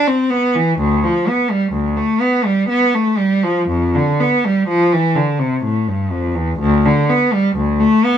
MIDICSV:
0, 0, Header, 1, 2, 480
1, 0, Start_track
1, 0, Tempo, 953895
1, 394, Time_signature, 3, 2, 24, 8
1, 1355, Tempo, 990099
1, 2315, Tempo, 960000
1, 4068, End_track
2, 0, Start_track
2, 0, Title_t, "Cello"
2, 0, Program_c, 0, 42
2, 38, Note_on_c, 0, 60, 58
2, 153, Note_on_c, 0, 59, 58
2, 156, Note_off_c, 0, 60, 0
2, 273, Note_off_c, 0, 59, 0
2, 277, Note_on_c, 0, 52, 65
2, 395, Note_off_c, 0, 52, 0
2, 399, Note_on_c, 0, 38, 72
2, 514, Note_off_c, 0, 38, 0
2, 522, Note_on_c, 0, 53, 58
2, 637, Note_off_c, 0, 53, 0
2, 644, Note_on_c, 0, 59, 61
2, 759, Note_off_c, 0, 59, 0
2, 760, Note_on_c, 0, 55, 63
2, 868, Note_on_c, 0, 38, 63
2, 877, Note_off_c, 0, 55, 0
2, 988, Note_off_c, 0, 38, 0
2, 992, Note_on_c, 0, 57, 66
2, 1109, Note_on_c, 0, 59, 59
2, 1113, Note_off_c, 0, 57, 0
2, 1232, Note_off_c, 0, 59, 0
2, 1235, Note_on_c, 0, 55, 57
2, 1354, Note_on_c, 0, 59, 65
2, 1355, Note_off_c, 0, 55, 0
2, 1470, Note_off_c, 0, 59, 0
2, 1478, Note_on_c, 0, 57, 60
2, 1590, Note_on_c, 0, 55, 63
2, 1595, Note_off_c, 0, 57, 0
2, 1712, Note_off_c, 0, 55, 0
2, 1715, Note_on_c, 0, 53, 62
2, 1837, Note_off_c, 0, 53, 0
2, 1837, Note_on_c, 0, 41, 74
2, 1957, Note_off_c, 0, 41, 0
2, 1966, Note_on_c, 0, 50, 63
2, 2083, Note_off_c, 0, 50, 0
2, 2088, Note_on_c, 0, 59, 61
2, 2202, Note_off_c, 0, 59, 0
2, 2209, Note_on_c, 0, 55, 62
2, 2320, Note_on_c, 0, 53, 73
2, 2321, Note_off_c, 0, 55, 0
2, 2435, Note_off_c, 0, 53, 0
2, 2445, Note_on_c, 0, 52, 69
2, 2556, Note_on_c, 0, 50, 58
2, 2559, Note_off_c, 0, 52, 0
2, 2674, Note_off_c, 0, 50, 0
2, 2675, Note_on_c, 0, 48, 62
2, 2793, Note_off_c, 0, 48, 0
2, 2796, Note_on_c, 0, 45, 67
2, 2910, Note_off_c, 0, 45, 0
2, 2918, Note_on_c, 0, 43, 59
2, 3034, Note_off_c, 0, 43, 0
2, 3036, Note_on_c, 0, 41, 60
2, 3153, Note_off_c, 0, 41, 0
2, 3155, Note_on_c, 0, 40, 61
2, 3273, Note_off_c, 0, 40, 0
2, 3276, Note_on_c, 0, 38, 83
2, 3392, Note_off_c, 0, 38, 0
2, 3406, Note_on_c, 0, 50, 70
2, 3519, Note_off_c, 0, 50, 0
2, 3527, Note_on_c, 0, 59, 64
2, 3640, Note_off_c, 0, 59, 0
2, 3646, Note_on_c, 0, 55, 68
2, 3760, Note_off_c, 0, 55, 0
2, 3762, Note_on_c, 0, 38, 68
2, 3875, Note_off_c, 0, 38, 0
2, 3880, Note_on_c, 0, 57, 76
2, 3997, Note_off_c, 0, 57, 0
2, 4001, Note_on_c, 0, 59, 67
2, 4068, Note_off_c, 0, 59, 0
2, 4068, End_track
0, 0, End_of_file